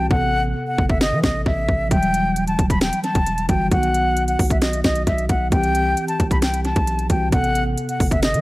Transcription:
0.00 0.13 E3 medium
0.00 0.12 C4 medium
0.00 0.12 F#4 medium
0.00 0.13 G4 medium
0.08 0.54 A1 loud
0.08 1.86 C3 medium
0.08 1.88 B3 medium
0.08 0.42 F#5 loud
0.08 kick loud
0.14 1.89 A4 medium
0.67 0.86 F#5 medium
0.78 1.14 G1 loud
0.78 kick loud
0.89 0.99 E5 medium
0.89 kick loud
1.01 1.19 D#5 medium
1.01 snare loud
1.12 1.23 E3 loud
1.23 1.45 A1 loud
1.23 1.42 D#5 medium
1.23 kick medium
1.23 snare loud
1.46 1.68 A1 loud
1.46 1.88 E5 medium
1.46 kick medium
1.68 1.90 A1 loud
1.68 kick medium
1.89 2.56 E1 loud
1.89 3.45 E3 medium
1.89 3.46 G3 medium
1.89 2.44 G5 loud
1.89 kick loud
1.89 closed hi-hat medium
1.95 3.48 F#3 medium
2.03 closed hi-hat medium
2.14 closed hi-hat medium
2.36 closed hi-hat medium
2.48 2.66 A5 medium
2.48 closed hi-hat medium
2.59 2.91 E1 loud
2.59 kick loud
2.59 closed hi-hat medium
2.70 2.79 B5 medium
2.70 kick loud
2.70 closed hi-hat medium
2.81 3.00 G5 medium
2.81 snare loud
2.81 closed hi-hat medium
2.93 closed hi-hat medium
3.04 3.46 A5 medium
3.04 closed hi-hat soft
3.15 3.48 E1 loud
3.15 kick loud
3.15 closed hi-hat medium
3.26 closed hi-hat medium
3.38 closed hi-hat medium
3.48 3.71 G1 loud
3.48 3.71 E3 medium
3.48 3.72 G3 soft
3.48 3.72 F#4 medium
3.48 3.67 G5 medium
3.48 kick medium
3.48 closed hi-hat medium
3.68 4.36 B1 loud
3.68 5.47 D#3 medium
3.68 5.48 B3 medium
3.68 4.25 F#5 loud
3.68 kick loud
3.68 closed hi-hat medium
3.74 5.50 F#4 medium
3.83 closed hi-hat soft
3.94 closed hi-hat medium
4.17 closed hi-hat medium
4.28 4.46 F#5 medium
4.28 closed hi-hat medium
4.39 4.83 B1 loud
4.39 kick loud
4.39 open hi-hat medium
4.50 4.60 E5 medium
4.50 kick loud
4.50 closed hi-hat medium
4.62 4.80 D#5 medium
4.62 snare loud
4.62 closed hi-hat medium
4.73 closed hi-hat medium
4.84 5.06 B1 loud
4.84 5.03 D#5 medium
4.84 kick medium
4.84 snare medium
4.84 closed hi-hat medium
4.95 closed hi-hat medium
5.07 5.29 B1 loud
5.07 5.25 E5 medium
5.07 kick medium
5.07 closed hi-hat medium
5.18 closed hi-hat soft
5.29 5.51 B1 loud
5.29 5.48 F#5 medium
5.29 kick medium
5.29 closed hi-hat medium
5.50 5.95 C2 loud
5.50 7.06 E3 medium
5.50 7.07 C4 medium
5.50 6.05 G5 loud
5.50 kick loud
5.50 closed hi-hat medium
5.56 7.09 G4 medium
5.63 closed hi-hat soft
5.75 closed hi-hat medium
5.97 closed hi-hat medium
6.08 6.27 A5 medium
6.08 closed hi-hat medium
6.20 6.74 C2 loud
6.20 kick loud
6.20 closed hi-hat medium
6.31 6.40 B5 medium
6.31 kick loud
6.31 closed hi-hat medium
6.42 6.61 G5 medium
6.42 snare loud
6.42 closed hi-hat medium
6.54 closed hi-hat medium
6.65 7.07 A5 medium
6.65 closed hi-hat medium
6.76 7.09 B1 loud
6.76 kick loud
6.76 closed hi-hat medium
6.87 closed hi-hat medium
6.99 closed hi-hat soft
7.09 7.32 C2 loud
7.09 7.32 E3 soft
7.09 7.33 C4 medium
7.09 7.34 F#4 medium
7.09 7.28 G5 medium
7.09 kick medium
7.09 closed hi-hat medium
7.30 7.76 A1 loud
7.30 8.41 C3 medium
7.30 8.41 B3 medium
7.30 7.63 F#5 loud
7.30 kick loud
7.30 closed hi-hat medium
7.36 8.41 A4 medium
7.44 closed hi-hat medium
7.55 closed hi-hat medium
7.78 closed hi-hat medium
7.89 8.07 F#5 medium
7.89 closed hi-hat medium
8.00 8.35 G1 loud
8.00 kick loud
8.00 open hi-hat medium
8.11 8.21 E5 medium
8.11 kick loud
8.11 closed hi-hat medium
8.23 8.41 D#5 medium
8.23 snare medium
8.23 closed hi-hat medium
8.34 8.41 E3 loud
8.34 closed hi-hat medium

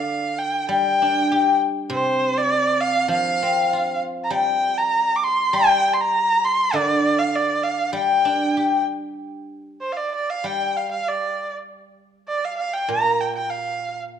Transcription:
0.00 1.31 D3 medium
0.00 0.40 F5 medium
0.39 0.69 G5 medium
0.69 2.51 G3 medium
0.69 1.57 G5 medium
1.02 2.22 D4 soft
1.32 2.52 G4 soft
1.90 3.11 C3 medium
1.94 2.39 C5 medium
2.38 2.82 D5 medium
2.81 3.10 F5 medium
3.08 4.92 F3 medium
3.08 3.98 F5 medium
3.43 4.64 C4 soft
3.73 4.95 F4 soft
4.24 4.33 A#5 medium
4.30 5.52 G3 medium
4.30 4.79 G5 medium
4.78 5.18 A#5 medium
5.16 5.25 D6 medium
5.24 5.56 C6 medium
5.53 7.34 G3 medium
5.53 5.95 G5 loud
5.94 6.02 C6 medium
6.01 6.46 A#5 medium
6.45 6.76 C6 medium
6.73 8.55 D3 medium
6.73 7.21 D5 medium
7.19 7.37 F5 medium
7.35 7.65 D5 medium
7.64 7.94 F5 medium
7.93 9.80 G3 medium
7.93 8.83 G5 medium
8.25 9.50 D4 soft
8.57 9.82 G4 soft
9.81 9.94 C5 medium
9.93 9.98 F5 soft
9.97 10.13 D5 medium
10.15 10.32 D5 medium
10.30 10.48 F5 medium
10.44 12.29 G3 soft
10.44 10.78 G5 medium
10.77 10.91 F5 medium
10.91 11.10 F5 medium
11.09 11.54 D5 medium
12.28 12.46 D5 medium
12.45 12.57 F5 medium
12.57 12.75 F5 medium
12.73 12.90 G5 medium
12.88 14.20 A#2 medium
12.88 13.22 A#5 medium
13.21 13.35 G5 medium
13.35 13.52 G5 medium
13.50 13.98 F5 medium

